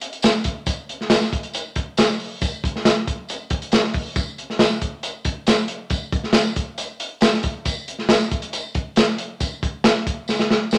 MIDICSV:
0, 0, Header, 1, 2, 480
1, 0, Start_track
1, 0, Tempo, 436999
1, 728, Time_signature, 4, 2, 24, 8
1, 11843, End_track
2, 0, Start_track
2, 0, Title_t, "Drums"
2, 16, Note_on_c, 9, 42, 82
2, 126, Note_off_c, 9, 42, 0
2, 139, Note_on_c, 9, 42, 52
2, 246, Note_on_c, 9, 54, 101
2, 249, Note_off_c, 9, 42, 0
2, 253, Note_on_c, 9, 42, 76
2, 266, Note_on_c, 9, 38, 101
2, 356, Note_off_c, 9, 54, 0
2, 362, Note_off_c, 9, 42, 0
2, 376, Note_off_c, 9, 38, 0
2, 484, Note_on_c, 9, 42, 80
2, 494, Note_on_c, 9, 36, 91
2, 594, Note_off_c, 9, 42, 0
2, 604, Note_off_c, 9, 36, 0
2, 727, Note_on_c, 9, 54, 71
2, 731, Note_on_c, 9, 42, 83
2, 733, Note_on_c, 9, 36, 96
2, 837, Note_off_c, 9, 54, 0
2, 841, Note_off_c, 9, 42, 0
2, 843, Note_off_c, 9, 36, 0
2, 981, Note_on_c, 9, 42, 62
2, 1090, Note_off_c, 9, 42, 0
2, 1107, Note_on_c, 9, 38, 32
2, 1207, Note_off_c, 9, 38, 0
2, 1207, Note_on_c, 9, 38, 127
2, 1212, Note_on_c, 9, 42, 105
2, 1213, Note_on_c, 9, 54, 86
2, 1317, Note_off_c, 9, 38, 0
2, 1322, Note_off_c, 9, 42, 0
2, 1323, Note_off_c, 9, 54, 0
2, 1334, Note_on_c, 9, 38, 33
2, 1444, Note_off_c, 9, 38, 0
2, 1457, Note_on_c, 9, 36, 90
2, 1461, Note_on_c, 9, 42, 71
2, 1567, Note_off_c, 9, 36, 0
2, 1571, Note_off_c, 9, 42, 0
2, 1572, Note_on_c, 9, 42, 52
2, 1682, Note_off_c, 9, 42, 0
2, 1686, Note_on_c, 9, 54, 60
2, 1696, Note_on_c, 9, 42, 92
2, 1796, Note_off_c, 9, 54, 0
2, 1806, Note_off_c, 9, 42, 0
2, 1928, Note_on_c, 9, 42, 73
2, 1934, Note_on_c, 9, 36, 83
2, 2038, Note_off_c, 9, 42, 0
2, 2044, Note_off_c, 9, 36, 0
2, 2168, Note_on_c, 9, 42, 81
2, 2169, Note_on_c, 9, 54, 102
2, 2181, Note_on_c, 9, 38, 98
2, 2277, Note_off_c, 9, 42, 0
2, 2279, Note_off_c, 9, 54, 0
2, 2290, Note_off_c, 9, 38, 0
2, 2301, Note_on_c, 9, 38, 40
2, 2411, Note_off_c, 9, 38, 0
2, 2412, Note_on_c, 9, 46, 53
2, 2522, Note_off_c, 9, 46, 0
2, 2650, Note_on_c, 9, 54, 74
2, 2654, Note_on_c, 9, 42, 69
2, 2655, Note_on_c, 9, 36, 100
2, 2760, Note_off_c, 9, 54, 0
2, 2764, Note_off_c, 9, 42, 0
2, 2765, Note_off_c, 9, 36, 0
2, 2897, Note_on_c, 9, 36, 94
2, 2909, Note_on_c, 9, 42, 63
2, 3007, Note_off_c, 9, 36, 0
2, 3019, Note_off_c, 9, 42, 0
2, 3027, Note_on_c, 9, 38, 33
2, 3133, Note_off_c, 9, 38, 0
2, 3133, Note_on_c, 9, 38, 125
2, 3135, Note_on_c, 9, 54, 90
2, 3138, Note_on_c, 9, 42, 97
2, 3243, Note_off_c, 9, 38, 0
2, 3245, Note_off_c, 9, 54, 0
2, 3248, Note_off_c, 9, 42, 0
2, 3377, Note_on_c, 9, 36, 83
2, 3378, Note_on_c, 9, 42, 69
2, 3487, Note_off_c, 9, 36, 0
2, 3488, Note_off_c, 9, 42, 0
2, 3608, Note_on_c, 9, 54, 57
2, 3622, Note_on_c, 9, 42, 97
2, 3718, Note_off_c, 9, 54, 0
2, 3731, Note_off_c, 9, 42, 0
2, 3846, Note_on_c, 9, 42, 70
2, 3852, Note_on_c, 9, 36, 92
2, 3956, Note_off_c, 9, 42, 0
2, 3962, Note_off_c, 9, 36, 0
2, 3974, Note_on_c, 9, 42, 55
2, 4083, Note_off_c, 9, 42, 0
2, 4083, Note_on_c, 9, 42, 79
2, 4089, Note_on_c, 9, 54, 92
2, 4096, Note_on_c, 9, 38, 90
2, 4192, Note_off_c, 9, 42, 0
2, 4199, Note_off_c, 9, 54, 0
2, 4206, Note_off_c, 9, 38, 0
2, 4211, Note_on_c, 9, 38, 34
2, 4321, Note_off_c, 9, 38, 0
2, 4322, Note_on_c, 9, 46, 59
2, 4332, Note_on_c, 9, 36, 96
2, 4432, Note_off_c, 9, 46, 0
2, 4442, Note_off_c, 9, 36, 0
2, 4567, Note_on_c, 9, 42, 81
2, 4568, Note_on_c, 9, 54, 72
2, 4569, Note_on_c, 9, 36, 99
2, 4677, Note_off_c, 9, 42, 0
2, 4678, Note_off_c, 9, 54, 0
2, 4679, Note_off_c, 9, 36, 0
2, 4815, Note_on_c, 9, 42, 59
2, 4925, Note_off_c, 9, 42, 0
2, 4941, Note_on_c, 9, 38, 31
2, 5044, Note_off_c, 9, 38, 0
2, 5044, Note_on_c, 9, 38, 114
2, 5049, Note_on_c, 9, 42, 87
2, 5055, Note_on_c, 9, 54, 92
2, 5154, Note_off_c, 9, 38, 0
2, 5159, Note_off_c, 9, 42, 0
2, 5160, Note_on_c, 9, 38, 35
2, 5165, Note_off_c, 9, 54, 0
2, 5270, Note_off_c, 9, 38, 0
2, 5288, Note_on_c, 9, 42, 69
2, 5291, Note_on_c, 9, 36, 79
2, 5398, Note_off_c, 9, 42, 0
2, 5401, Note_off_c, 9, 36, 0
2, 5525, Note_on_c, 9, 42, 86
2, 5533, Note_on_c, 9, 54, 63
2, 5635, Note_off_c, 9, 42, 0
2, 5643, Note_off_c, 9, 54, 0
2, 5762, Note_on_c, 9, 42, 76
2, 5768, Note_on_c, 9, 36, 87
2, 5872, Note_off_c, 9, 42, 0
2, 5878, Note_off_c, 9, 36, 0
2, 6004, Note_on_c, 9, 42, 80
2, 6008, Note_on_c, 9, 54, 99
2, 6017, Note_on_c, 9, 38, 95
2, 6114, Note_off_c, 9, 42, 0
2, 6118, Note_off_c, 9, 54, 0
2, 6127, Note_off_c, 9, 38, 0
2, 6238, Note_on_c, 9, 42, 77
2, 6348, Note_off_c, 9, 42, 0
2, 6479, Note_on_c, 9, 42, 71
2, 6487, Note_on_c, 9, 36, 98
2, 6492, Note_on_c, 9, 54, 72
2, 6589, Note_off_c, 9, 42, 0
2, 6596, Note_off_c, 9, 36, 0
2, 6601, Note_off_c, 9, 54, 0
2, 6728, Note_on_c, 9, 36, 102
2, 6729, Note_on_c, 9, 42, 56
2, 6838, Note_off_c, 9, 36, 0
2, 6839, Note_off_c, 9, 42, 0
2, 6850, Note_on_c, 9, 38, 31
2, 6950, Note_off_c, 9, 38, 0
2, 6950, Note_on_c, 9, 38, 121
2, 6956, Note_on_c, 9, 42, 96
2, 6978, Note_on_c, 9, 54, 90
2, 7060, Note_off_c, 9, 38, 0
2, 7065, Note_off_c, 9, 42, 0
2, 7088, Note_off_c, 9, 54, 0
2, 7206, Note_on_c, 9, 42, 68
2, 7211, Note_on_c, 9, 36, 89
2, 7316, Note_off_c, 9, 42, 0
2, 7321, Note_off_c, 9, 36, 0
2, 7445, Note_on_c, 9, 42, 94
2, 7450, Note_on_c, 9, 54, 61
2, 7555, Note_off_c, 9, 42, 0
2, 7560, Note_off_c, 9, 54, 0
2, 7687, Note_on_c, 9, 42, 83
2, 7796, Note_off_c, 9, 42, 0
2, 7917, Note_on_c, 9, 42, 77
2, 7929, Note_on_c, 9, 54, 97
2, 7930, Note_on_c, 9, 38, 99
2, 8027, Note_off_c, 9, 42, 0
2, 8039, Note_off_c, 9, 54, 0
2, 8040, Note_off_c, 9, 38, 0
2, 8058, Note_on_c, 9, 38, 41
2, 8160, Note_on_c, 9, 42, 76
2, 8168, Note_off_c, 9, 38, 0
2, 8170, Note_on_c, 9, 36, 90
2, 8270, Note_off_c, 9, 42, 0
2, 8279, Note_off_c, 9, 36, 0
2, 8406, Note_on_c, 9, 42, 75
2, 8410, Note_on_c, 9, 36, 85
2, 8411, Note_on_c, 9, 54, 74
2, 8516, Note_off_c, 9, 42, 0
2, 8520, Note_off_c, 9, 36, 0
2, 8520, Note_off_c, 9, 54, 0
2, 8654, Note_on_c, 9, 42, 63
2, 8764, Note_off_c, 9, 42, 0
2, 8772, Note_on_c, 9, 38, 34
2, 8882, Note_off_c, 9, 38, 0
2, 8883, Note_on_c, 9, 38, 127
2, 8889, Note_on_c, 9, 42, 92
2, 8898, Note_on_c, 9, 54, 96
2, 8993, Note_off_c, 9, 38, 0
2, 8998, Note_off_c, 9, 42, 0
2, 9001, Note_on_c, 9, 38, 32
2, 9008, Note_off_c, 9, 54, 0
2, 9111, Note_off_c, 9, 38, 0
2, 9131, Note_on_c, 9, 42, 61
2, 9134, Note_on_c, 9, 36, 89
2, 9241, Note_off_c, 9, 42, 0
2, 9244, Note_off_c, 9, 36, 0
2, 9248, Note_on_c, 9, 42, 58
2, 9358, Note_off_c, 9, 42, 0
2, 9368, Note_on_c, 9, 42, 89
2, 9376, Note_on_c, 9, 54, 60
2, 9478, Note_off_c, 9, 42, 0
2, 9486, Note_off_c, 9, 54, 0
2, 9607, Note_on_c, 9, 42, 77
2, 9612, Note_on_c, 9, 36, 90
2, 9716, Note_off_c, 9, 42, 0
2, 9722, Note_off_c, 9, 36, 0
2, 9842, Note_on_c, 9, 42, 83
2, 9854, Note_on_c, 9, 54, 90
2, 9855, Note_on_c, 9, 38, 101
2, 9952, Note_off_c, 9, 42, 0
2, 9963, Note_off_c, 9, 54, 0
2, 9965, Note_off_c, 9, 38, 0
2, 10087, Note_on_c, 9, 42, 86
2, 10196, Note_off_c, 9, 42, 0
2, 10329, Note_on_c, 9, 42, 80
2, 10332, Note_on_c, 9, 36, 89
2, 10332, Note_on_c, 9, 54, 71
2, 10439, Note_off_c, 9, 42, 0
2, 10442, Note_off_c, 9, 36, 0
2, 10442, Note_off_c, 9, 54, 0
2, 10575, Note_on_c, 9, 36, 91
2, 10580, Note_on_c, 9, 42, 60
2, 10685, Note_off_c, 9, 36, 0
2, 10690, Note_off_c, 9, 42, 0
2, 10810, Note_on_c, 9, 38, 119
2, 10815, Note_on_c, 9, 42, 93
2, 10818, Note_on_c, 9, 54, 91
2, 10920, Note_off_c, 9, 38, 0
2, 10925, Note_off_c, 9, 42, 0
2, 10928, Note_off_c, 9, 54, 0
2, 10929, Note_on_c, 9, 38, 32
2, 11039, Note_off_c, 9, 38, 0
2, 11058, Note_on_c, 9, 36, 83
2, 11058, Note_on_c, 9, 42, 67
2, 11168, Note_off_c, 9, 36, 0
2, 11168, Note_off_c, 9, 42, 0
2, 11289, Note_on_c, 9, 54, 61
2, 11301, Note_on_c, 9, 38, 47
2, 11399, Note_off_c, 9, 54, 0
2, 11410, Note_off_c, 9, 38, 0
2, 11417, Note_on_c, 9, 38, 53
2, 11527, Note_off_c, 9, 38, 0
2, 11539, Note_on_c, 9, 38, 68
2, 11649, Note_off_c, 9, 38, 0
2, 11763, Note_on_c, 9, 54, 98
2, 11782, Note_on_c, 9, 38, 73
2, 11843, Note_off_c, 9, 38, 0
2, 11843, Note_off_c, 9, 54, 0
2, 11843, End_track
0, 0, End_of_file